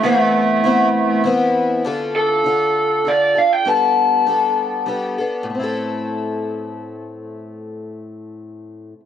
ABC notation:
X:1
M:3/4
L:1/16
Q:1/4=99
K:Am
V:1 name="Lead electric guitar"
A,8 z4 | z2 A6 d2 f g | a8 z4 | z12 |
z12 |]
V:2 name="Twelve-string acoustic guitar"
[A,,E,B,CE]4 [E,B,CE]4 [E,B,CE]4 | [D,DFA]4 [D,DFA]4 [D,DFA]2 [DFA]2 | [G,B,DA]4 [G,B,DA]4 [G,B,DA]2 [B,DA]2 | [A,,A,CEA]12- |
[A,,A,CEA]12 |]